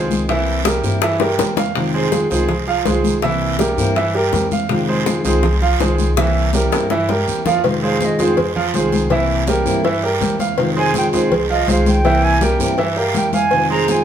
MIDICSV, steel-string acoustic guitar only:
0, 0, Header, 1, 3, 480
1, 0, Start_track
1, 0, Key_signature, -4, "minor"
1, 0, Tempo, 367422
1, 378, Time_signature, 4, 2, 24, 8
1, 18343, End_track
2, 0, Start_track
2, 0, Title_t, "Steel-string acoustic guitar"
2, 0, Program_c, 0, 25
2, 0, Note_on_c, 0, 51, 59
2, 0, Note_on_c, 0, 56, 47
2, 0, Note_on_c, 0, 60, 55
2, 0, Note_on_c, 0, 65, 57
2, 363, Note_off_c, 0, 51, 0
2, 369, Note_off_c, 0, 56, 0
2, 371, Note_on_c, 0, 48, 66
2, 373, Note_off_c, 0, 60, 0
2, 377, Note_off_c, 0, 65, 0
2, 380, Note_on_c, 0, 52, 77
2, 387, Note_on_c, 0, 58, 77
2, 391, Note_on_c, 0, 60, 85
2, 397, Note_on_c, 0, 64, 83
2, 833, Note_off_c, 0, 52, 0
2, 845, Note_off_c, 0, 48, 0
2, 845, Note_off_c, 0, 58, 0
2, 849, Note_on_c, 0, 52, 52
2, 855, Note_off_c, 0, 60, 0
2, 858, Note_off_c, 0, 64, 0
2, 861, Note_on_c, 0, 58, 52
2, 869, Note_on_c, 0, 60, 57
2, 876, Note_on_c, 0, 64, 60
2, 1075, Note_off_c, 0, 64, 0
2, 1082, Note_off_c, 0, 60, 0
2, 1084, Note_off_c, 0, 52, 0
2, 1090, Note_off_c, 0, 58, 0
2, 1090, Note_on_c, 0, 64, 67
2, 1098, Note_on_c, 0, 60, 57
2, 1110, Note_on_c, 0, 58, 57
2, 1116, Note_on_c, 0, 52, 51
2, 1325, Note_off_c, 0, 64, 0
2, 1327, Note_off_c, 0, 52, 0
2, 1328, Note_off_c, 0, 58, 0
2, 1329, Note_off_c, 0, 60, 0
2, 1812, Note_on_c, 0, 52, 52
2, 1825, Note_on_c, 0, 58, 49
2, 1828, Note_on_c, 0, 60, 57
2, 1836, Note_on_c, 0, 64, 53
2, 2285, Note_on_c, 0, 48, 69
2, 2287, Note_off_c, 0, 52, 0
2, 2289, Note_off_c, 0, 60, 0
2, 2292, Note_on_c, 0, 51, 76
2, 2293, Note_off_c, 0, 58, 0
2, 2299, Note_off_c, 0, 64, 0
2, 2300, Note_on_c, 0, 56, 72
2, 2305, Note_on_c, 0, 60, 83
2, 2308, Note_on_c, 0, 65, 69
2, 2747, Note_off_c, 0, 51, 0
2, 2759, Note_off_c, 0, 56, 0
2, 2763, Note_off_c, 0, 48, 0
2, 2763, Note_on_c, 0, 51, 54
2, 2767, Note_off_c, 0, 60, 0
2, 2775, Note_off_c, 0, 65, 0
2, 2775, Note_on_c, 0, 56, 56
2, 2783, Note_on_c, 0, 60, 52
2, 2791, Note_on_c, 0, 65, 52
2, 2988, Note_off_c, 0, 65, 0
2, 2998, Note_off_c, 0, 60, 0
2, 3002, Note_off_c, 0, 51, 0
2, 3004, Note_on_c, 0, 65, 70
2, 3008, Note_off_c, 0, 56, 0
2, 3013, Note_on_c, 0, 60, 60
2, 3024, Note_on_c, 0, 56, 51
2, 3031, Note_on_c, 0, 51, 49
2, 3239, Note_off_c, 0, 51, 0
2, 3240, Note_off_c, 0, 56, 0
2, 3243, Note_off_c, 0, 65, 0
2, 3247, Note_off_c, 0, 60, 0
2, 3734, Note_on_c, 0, 51, 49
2, 3745, Note_on_c, 0, 56, 46
2, 3754, Note_on_c, 0, 60, 52
2, 3760, Note_on_c, 0, 65, 53
2, 4208, Note_off_c, 0, 51, 0
2, 4214, Note_off_c, 0, 56, 0
2, 4216, Note_on_c, 0, 48, 80
2, 4218, Note_off_c, 0, 60, 0
2, 4221, Note_off_c, 0, 65, 0
2, 4223, Note_on_c, 0, 52, 73
2, 4232, Note_on_c, 0, 58, 76
2, 4236, Note_on_c, 0, 60, 85
2, 4241, Note_on_c, 0, 64, 80
2, 4678, Note_off_c, 0, 52, 0
2, 4689, Note_off_c, 0, 48, 0
2, 4689, Note_off_c, 0, 58, 0
2, 4690, Note_off_c, 0, 60, 0
2, 4694, Note_on_c, 0, 52, 54
2, 4701, Note_off_c, 0, 64, 0
2, 4704, Note_on_c, 0, 58, 56
2, 4706, Note_on_c, 0, 60, 52
2, 4715, Note_on_c, 0, 64, 64
2, 4916, Note_off_c, 0, 64, 0
2, 4928, Note_off_c, 0, 52, 0
2, 4929, Note_off_c, 0, 60, 0
2, 4932, Note_on_c, 0, 64, 68
2, 4933, Note_off_c, 0, 58, 0
2, 4945, Note_on_c, 0, 60, 68
2, 4957, Note_on_c, 0, 58, 58
2, 4960, Note_on_c, 0, 52, 56
2, 5167, Note_off_c, 0, 64, 0
2, 5174, Note_off_c, 0, 60, 0
2, 5175, Note_off_c, 0, 52, 0
2, 5180, Note_off_c, 0, 58, 0
2, 5653, Note_on_c, 0, 52, 51
2, 5665, Note_on_c, 0, 58, 52
2, 5674, Note_on_c, 0, 60, 55
2, 5680, Note_on_c, 0, 64, 48
2, 6125, Note_on_c, 0, 48, 73
2, 6128, Note_off_c, 0, 52, 0
2, 6131, Note_off_c, 0, 60, 0
2, 6133, Note_off_c, 0, 58, 0
2, 6135, Note_on_c, 0, 51, 67
2, 6139, Note_on_c, 0, 56, 76
2, 6142, Note_off_c, 0, 64, 0
2, 6147, Note_on_c, 0, 60, 77
2, 6151, Note_on_c, 0, 65, 85
2, 6592, Note_off_c, 0, 51, 0
2, 6604, Note_off_c, 0, 48, 0
2, 6605, Note_off_c, 0, 56, 0
2, 6608, Note_on_c, 0, 51, 54
2, 6612, Note_off_c, 0, 60, 0
2, 6617, Note_off_c, 0, 65, 0
2, 6620, Note_on_c, 0, 56, 51
2, 6627, Note_on_c, 0, 60, 56
2, 6637, Note_on_c, 0, 65, 54
2, 6827, Note_off_c, 0, 65, 0
2, 6835, Note_off_c, 0, 60, 0
2, 6840, Note_off_c, 0, 56, 0
2, 6843, Note_on_c, 0, 65, 66
2, 6845, Note_off_c, 0, 51, 0
2, 6850, Note_on_c, 0, 60, 69
2, 6855, Note_on_c, 0, 56, 64
2, 6869, Note_on_c, 0, 51, 60
2, 7077, Note_off_c, 0, 51, 0
2, 7080, Note_off_c, 0, 56, 0
2, 7083, Note_off_c, 0, 60, 0
2, 7083, Note_off_c, 0, 65, 0
2, 7573, Note_on_c, 0, 51, 52
2, 7580, Note_on_c, 0, 56, 49
2, 7590, Note_on_c, 0, 60, 52
2, 7600, Note_on_c, 0, 65, 52
2, 8048, Note_off_c, 0, 51, 0
2, 8049, Note_on_c, 0, 48, 73
2, 8052, Note_off_c, 0, 56, 0
2, 8057, Note_off_c, 0, 60, 0
2, 8060, Note_on_c, 0, 52, 82
2, 8062, Note_off_c, 0, 65, 0
2, 8065, Note_on_c, 0, 58, 77
2, 8071, Note_on_c, 0, 60, 69
2, 8072, Note_on_c, 0, 64, 80
2, 8519, Note_off_c, 0, 52, 0
2, 8526, Note_off_c, 0, 48, 0
2, 8528, Note_off_c, 0, 58, 0
2, 8534, Note_on_c, 0, 52, 57
2, 8537, Note_off_c, 0, 60, 0
2, 8538, Note_off_c, 0, 64, 0
2, 8544, Note_on_c, 0, 58, 57
2, 8553, Note_on_c, 0, 60, 55
2, 8561, Note_on_c, 0, 64, 57
2, 8764, Note_off_c, 0, 64, 0
2, 8769, Note_off_c, 0, 52, 0
2, 8770, Note_off_c, 0, 60, 0
2, 8774, Note_off_c, 0, 58, 0
2, 8779, Note_on_c, 0, 64, 70
2, 8786, Note_on_c, 0, 60, 64
2, 8796, Note_on_c, 0, 58, 64
2, 8800, Note_on_c, 0, 52, 56
2, 9007, Note_off_c, 0, 52, 0
2, 9012, Note_off_c, 0, 58, 0
2, 9012, Note_off_c, 0, 64, 0
2, 9015, Note_off_c, 0, 60, 0
2, 9494, Note_on_c, 0, 52, 51
2, 9505, Note_on_c, 0, 58, 49
2, 9517, Note_on_c, 0, 60, 54
2, 9523, Note_on_c, 0, 64, 53
2, 9969, Note_off_c, 0, 52, 0
2, 9974, Note_off_c, 0, 58, 0
2, 9978, Note_on_c, 0, 48, 66
2, 9980, Note_off_c, 0, 60, 0
2, 9983, Note_off_c, 0, 64, 0
2, 9985, Note_on_c, 0, 51, 71
2, 9993, Note_on_c, 0, 56, 79
2, 10000, Note_on_c, 0, 60, 72
2, 10006, Note_on_c, 0, 65, 74
2, 10447, Note_off_c, 0, 51, 0
2, 10451, Note_off_c, 0, 48, 0
2, 10455, Note_off_c, 0, 56, 0
2, 10462, Note_off_c, 0, 60, 0
2, 10463, Note_on_c, 0, 51, 51
2, 10465, Note_off_c, 0, 65, 0
2, 10471, Note_on_c, 0, 56, 51
2, 10479, Note_on_c, 0, 60, 56
2, 10487, Note_on_c, 0, 65, 58
2, 10687, Note_off_c, 0, 65, 0
2, 10693, Note_off_c, 0, 51, 0
2, 10697, Note_off_c, 0, 56, 0
2, 10701, Note_off_c, 0, 60, 0
2, 10702, Note_on_c, 0, 65, 71
2, 10718, Note_on_c, 0, 60, 67
2, 10725, Note_on_c, 0, 56, 58
2, 10729, Note_on_c, 0, 51, 61
2, 10932, Note_off_c, 0, 51, 0
2, 10933, Note_off_c, 0, 65, 0
2, 10939, Note_off_c, 0, 56, 0
2, 10941, Note_off_c, 0, 60, 0
2, 11411, Note_on_c, 0, 51, 52
2, 11416, Note_on_c, 0, 56, 50
2, 11429, Note_on_c, 0, 60, 56
2, 11434, Note_on_c, 0, 65, 59
2, 11882, Note_off_c, 0, 51, 0
2, 11884, Note_off_c, 0, 60, 0
2, 11885, Note_on_c, 0, 48, 78
2, 11887, Note_on_c, 0, 52, 80
2, 11890, Note_off_c, 0, 56, 0
2, 11898, Note_on_c, 0, 58, 78
2, 11899, Note_off_c, 0, 65, 0
2, 11899, Note_on_c, 0, 60, 67
2, 11908, Note_on_c, 0, 64, 73
2, 12347, Note_off_c, 0, 52, 0
2, 12357, Note_off_c, 0, 58, 0
2, 12362, Note_on_c, 0, 52, 49
2, 12364, Note_off_c, 0, 48, 0
2, 12368, Note_off_c, 0, 60, 0
2, 12373, Note_on_c, 0, 58, 51
2, 12376, Note_off_c, 0, 64, 0
2, 12383, Note_on_c, 0, 60, 57
2, 12392, Note_on_c, 0, 64, 54
2, 12596, Note_off_c, 0, 64, 0
2, 12602, Note_off_c, 0, 60, 0
2, 12603, Note_off_c, 0, 52, 0
2, 12608, Note_off_c, 0, 58, 0
2, 12611, Note_on_c, 0, 64, 78
2, 12618, Note_on_c, 0, 60, 67
2, 12625, Note_on_c, 0, 58, 66
2, 12632, Note_on_c, 0, 52, 57
2, 12836, Note_off_c, 0, 52, 0
2, 12842, Note_off_c, 0, 58, 0
2, 12844, Note_off_c, 0, 60, 0
2, 12848, Note_off_c, 0, 64, 0
2, 13324, Note_on_c, 0, 52, 51
2, 13335, Note_on_c, 0, 58, 52
2, 13343, Note_on_c, 0, 60, 55
2, 13353, Note_on_c, 0, 64, 55
2, 13804, Note_off_c, 0, 52, 0
2, 13809, Note_off_c, 0, 58, 0
2, 13813, Note_off_c, 0, 60, 0
2, 13816, Note_on_c, 0, 48, 71
2, 13818, Note_off_c, 0, 64, 0
2, 13820, Note_on_c, 0, 51, 82
2, 13824, Note_on_c, 0, 56, 69
2, 13836, Note_on_c, 0, 60, 70
2, 13837, Note_on_c, 0, 65, 88
2, 14283, Note_off_c, 0, 51, 0
2, 14289, Note_off_c, 0, 48, 0
2, 14293, Note_off_c, 0, 56, 0
2, 14299, Note_off_c, 0, 60, 0
2, 14299, Note_on_c, 0, 51, 54
2, 14300, Note_off_c, 0, 65, 0
2, 14311, Note_on_c, 0, 56, 54
2, 14319, Note_on_c, 0, 60, 61
2, 14323, Note_on_c, 0, 65, 65
2, 14515, Note_off_c, 0, 65, 0
2, 14526, Note_off_c, 0, 60, 0
2, 14531, Note_off_c, 0, 51, 0
2, 14531, Note_on_c, 0, 65, 67
2, 14532, Note_off_c, 0, 56, 0
2, 14542, Note_on_c, 0, 60, 64
2, 14548, Note_on_c, 0, 56, 66
2, 14554, Note_on_c, 0, 51, 57
2, 14766, Note_off_c, 0, 51, 0
2, 14767, Note_off_c, 0, 65, 0
2, 14769, Note_off_c, 0, 60, 0
2, 14771, Note_off_c, 0, 56, 0
2, 15254, Note_on_c, 0, 51, 56
2, 15262, Note_on_c, 0, 56, 50
2, 15273, Note_on_c, 0, 60, 53
2, 15276, Note_on_c, 0, 65, 54
2, 15728, Note_off_c, 0, 51, 0
2, 15731, Note_on_c, 0, 48, 70
2, 15732, Note_off_c, 0, 56, 0
2, 15732, Note_off_c, 0, 60, 0
2, 15739, Note_off_c, 0, 65, 0
2, 15739, Note_on_c, 0, 52, 83
2, 15741, Note_on_c, 0, 58, 70
2, 15748, Note_on_c, 0, 60, 79
2, 15756, Note_on_c, 0, 64, 76
2, 16194, Note_off_c, 0, 52, 0
2, 16201, Note_off_c, 0, 58, 0
2, 16206, Note_off_c, 0, 48, 0
2, 16210, Note_off_c, 0, 60, 0
2, 16210, Note_on_c, 0, 52, 50
2, 16216, Note_on_c, 0, 58, 55
2, 16219, Note_off_c, 0, 64, 0
2, 16226, Note_on_c, 0, 60, 52
2, 16232, Note_on_c, 0, 64, 60
2, 16432, Note_off_c, 0, 64, 0
2, 16445, Note_off_c, 0, 52, 0
2, 16448, Note_off_c, 0, 60, 0
2, 16448, Note_on_c, 0, 64, 68
2, 16449, Note_off_c, 0, 58, 0
2, 16464, Note_on_c, 0, 60, 70
2, 16470, Note_on_c, 0, 58, 68
2, 16476, Note_on_c, 0, 52, 53
2, 16684, Note_off_c, 0, 64, 0
2, 16686, Note_off_c, 0, 52, 0
2, 16688, Note_off_c, 0, 58, 0
2, 16690, Note_off_c, 0, 60, 0
2, 17170, Note_on_c, 0, 52, 51
2, 17176, Note_on_c, 0, 58, 48
2, 17187, Note_on_c, 0, 60, 50
2, 17191, Note_on_c, 0, 64, 55
2, 17645, Note_off_c, 0, 52, 0
2, 17648, Note_off_c, 0, 58, 0
2, 17653, Note_off_c, 0, 60, 0
2, 17654, Note_on_c, 0, 48, 66
2, 17655, Note_off_c, 0, 64, 0
2, 17660, Note_on_c, 0, 51, 67
2, 17669, Note_on_c, 0, 56, 79
2, 17675, Note_on_c, 0, 60, 75
2, 17680, Note_on_c, 0, 65, 73
2, 18121, Note_off_c, 0, 51, 0
2, 18127, Note_off_c, 0, 48, 0
2, 18134, Note_off_c, 0, 56, 0
2, 18137, Note_off_c, 0, 60, 0
2, 18137, Note_on_c, 0, 51, 56
2, 18139, Note_off_c, 0, 65, 0
2, 18149, Note_on_c, 0, 56, 48
2, 18156, Note_on_c, 0, 60, 59
2, 18163, Note_on_c, 0, 65, 59
2, 18343, Note_off_c, 0, 51, 0
2, 18343, Note_off_c, 0, 56, 0
2, 18343, Note_off_c, 0, 60, 0
2, 18343, Note_off_c, 0, 65, 0
2, 18343, End_track
3, 0, Start_track
3, 0, Title_t, "Muted steel-string acoustic guitar strokes"
3, 1339, Note_on_c, 9, 29, 66
3, 1469, Note_off_c, 9, 29, 0
3, 3252, Note_on_c, 9, 29, 67
3, 3383, Note_off_c, 9, 29, 0
3, 5185, Note_on_c, 9, 29, 69
3, 5316, Note_off_c, 9, 29, 0
3, 7089, Note_on_c, 9, 29, 67
3, 7220, Note_off_c, 9, 29, 0
3, 9022, Note_on_c, 9, 29, 61
3, 9153, Note_off_c, 9, 29, 0
3, 10944, Note_on_c, 9, 29, 63
3, 11075, Note_off_c, 9, 29, 0
3, 12851, Note_on_c, 9, 29, 68
3, 12982, Note_off_c, 9, 29, 0
3, 14777, Note_on_c, 9, 29, 67
3, 14907, Note_off_c, 9, 29, 0
3, 16698, Note_on_c, 9, 29, 61
3, 16829, Note_off_c, 9, 29, 0
3, 18343, End_track
0, 0, End_of_file